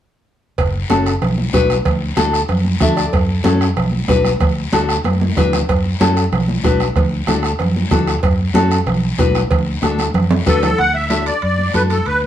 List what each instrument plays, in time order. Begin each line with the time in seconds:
0.58 fingered electric bass F#1, bombo low, bombo rim, cowbell, high conga, long guiro
0.74 high conga
0.89 fingered electric bass F#1, nylon-string guitar C#4 F#4 A4, bombo rim, high conga, short guiro
1.06 bombo rim, short guiro
1.22 fingered electric bass B1, bombo rim, cowbell, low conga, long guiro
1.38 high conga
1.53 fingered electric bass B1, nylon-string guitar D4 F#4 B4, bombo low, bombo rim, high conga, short guiro
1.70 bombo rim, high conga, short guiro
1.85 fingered electric bass D2, bombo low, bombo rim, cowbell, high conga, low conga, long guiro
2.02 high conga
2.16 fingered electric bass D2, nylon-string guitar D4 F#4 A4, bombo rim, high conga, short guiro
2.33 bombo rim, short guiro
2.49 fingered electric bass F#2, bombo rim, cowbell, low conga, long guiro
2.65 high conga
2.80 fingered electric bass D2, nylon-string guitar D4 F#4 A4 E5, bombo low, bombo rim, high conga, low conga, short guiro
2.97 nylon-string guitar D5, bombo rim, short guiro
3.12 fingered electric bass F#2, bombo low, bombo rim, cowbell, high conga, long guiro
3.28 high conga
3.44 fingered electric bass F#2, nylon-string guitar C#4 F#4 A4, bombo rim, high conga, short guiro
3.61 bombo rim, short guiro
3.77 fingered electric bass B1, bombo rim, cowbell, low conga, long guiro
3.92 high conga
4.08 fingered electric bass B1, nylon-string guitar D4 F#4 B4, bombo low, bombo rim, high conga, low timbale, short guiro
4.25 bombo rim, high conga, short guiro
4.40 fingered electric bass D2, bombo low, bombo rim, cowbell, high conga, low conga, long guiro
4.57 high conga
4.72 fingered electric bass D2, nylon-string guitar D4 F#4 A4, bombo rim, high conga, short guiro
4.89 bombo rim, short guiro
5.04 fingered electric bass F#2, bombo rim, cowbell, high conga, long guiro
5.21 high conga
5.37 fingered electric bass D2, nylon-string guitar D4 F#4 B4, bombo low, bombo rim, low conga, low timbale, short guiro
5.53 bombo rim, low conga, short guiro
5.69 fingered electric bass F#2, bombo low, bombo rim, cowbell, high conga, long guiro
5.85 high conga
6.00 fingered electric bass F#2, nylon-string guitar C#4 F#4 A4, bombo rim, high conga, short guiro
6.17 bombo rim, short guiro
6.32 fingered electric bass B1, bombo rim, cowbell, low conga, long guiro
6.48 high conga
6.63 fingered electric bass B1, nylon-string guitar D4 F#4 B4, bombo low, bombo rim, high conga, low timbale, short guiro
6.80 bombo rim, high conga, short guiro
6.96 fingered electric bass D2, bombo low, bombo rim, cowbell, high conga, low conga, long guiro
7.13 high conga
7.27 fingered electric bass D2, nylon-string guitar D4 F#4 A4, bombo rim, high conga, short guiro
7.43 bombo rim, short guiro
7.59 fingered electric bass F#2, bombo rim, cowbell, low conga, long guiro
7.76 high conga
7.91 fingered electric bass D2, nylon-string guitar D4 F#4 A4, bombo low, bombo rim, high conga, low conga, low timbale, short guiro
8.07 bombo rim, short guiro
8.23 fingered electric bass F#2, bombo low, bombo rim, cowbell, high conga, long guiro
8.40 high conga
8.54 fingered electric bass F#2, nylon-string guitar C#4 F#4 A4, bombo rim, high conga, short guiro
8.71 bombo rim, short guiro
8.86 fingered electric bass B1, bombo rim, cowbell, low conga, long guiro
9.18 fingered electric bass B1, nylon-string guitar D4 F#4 B4, bombo low, bombo rim, high conga, low timbale, short guiro
9.35 bombo rim, high conga, short guiro
9.51 fingered electric bass D2, bombo low, bombo rim, cowbell, high conga, low conga, long guiro
9.67 high conga
9.82 fingered electric bass D2, nylon-string guitar D4 F#4 A4, bombo rim, high conga, short guiro
9.98 bombo rim, high conga, short guiro
10.14 fingered electric bass F#2, bombo rim, cowbell, low conga, long guiro
10.31 low conga, high timbale
10.46 fingered electric bass D2, nylon-string guitar D4 F#4 B4, accordion A4, bombo low, bombo rim, low conga, short guiro
10.63 accordion A4, bombo rim, low conga, low timbale, short guiro
10.78 fingered electric bass D2, accordion F#5, high conga, high timbale, long guiro
10.95 accordion E5, high conga
11.10 nylon-string guitar D4 F#4 A4, high conga, high timbale, short guiro
11.26 accordion D5, high timbale, short guiro
11.42 fingered electric bass F#2, accordion D5, high timbale, long guiro
11.58 high conga
11.74 fingered electric bass F#2, nylon-string guitar D4 F#4 A4, accordion B4, high conga, high timbale, short guiro
11.90 accordion A4, high conga, high timbale, short guiro
12.06 fingered electric bass D2, accordion B4, high conga, high timbale, long guiro
12.22 accordion B4, high conga